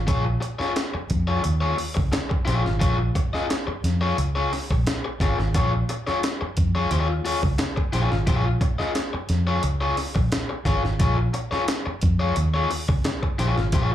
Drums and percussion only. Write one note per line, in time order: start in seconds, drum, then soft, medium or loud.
0.08 kick loud
0.08 closed hi-hat medium
0.42 closed hi-hat medium
0.61 snare soft
0.76 snare loud
0.76 closed hi-hat medium
1.10 kick medium
1.10 closed hi-hat medium
1.44 closed hi-hat medium
1.78 open hi-hat medium
1.97 kick loud
2.13 snare loud
2.13 closed hi-hat medium
2.31 kick medium
2.48 snare soft
2.48 closed hi-hat medium
2.66 snare soft
2.81 kick loud
2.81 closed hi-hat loud
3.15 kick medium
3.15 closed hi-hat medium
3.35 snare soft
3.50 snare loud
3.50 closed hi-hat medium
3.84 snare soft
3.84 closed hi-hat medium
4.18 closed hi-hat medium
4.53 snare soft
4.53 open hi-hat medium
4.71 kick medium
4.87 snare loud
4.87 closed hi-hat medium
5.20 kick medium
5.20 snare soft
5.20 closed hi-hat medium
5.39 snare soft
5.54 kick loud
5.54 closed hi-hat medium
5.89 closed hi-hat medium
6.07 snare soft
6.23 snare medium
6.23 closed hi-hat medium
6.57 kick medium
6.57 closed hi-hat medium
6.91 closed hi-hat medium
7.26 open hi-hat medium
7.43 kick medium
7.58 snare loud
7.58 closed hi-hat medium
7.77 kick medium
7.93 snare soft
7.93 closed hi-hat medium
8.12 snare soft
8.27 kick loud
8.27 closed hi-hat medium
8.61 kick medium
8.61 closed hi-hat medium
8.80 snare soft
8.95 snare medium
8.95 closed hi-hat loud
9.29 snare soft
9.29 closed hi-hat medium
9.63 closed hi-hat medium
9.97 snare soft
9.97 open hi-hat medium
10.16 kick medium
10.32 snare loud
10.32 closed hi-hat medium
10.65 kick medium
10.65 snare soft
10.65 closed hi-hat medium
10.85 snare soft
11.00 kick loud
11.00 closed hi-hat medium
11.34 closed hi-hat medium
11.53 snare soft
11.68 snare loud
11.68 closed hi-hat loud
12.02 kick medium
12.02 closed hi-hat medium
12.36 closed hi-hat medium
12.71 open hi-hat medium
12.89 kick medium
13.04 snare loud
13.04 closed hi-hat medium
13.23 kick medium
13.39 snare soft
13.39 closed hi-hat medium
13.58 snare soft
13.72 kick loud
13.72 closed hi-hat loud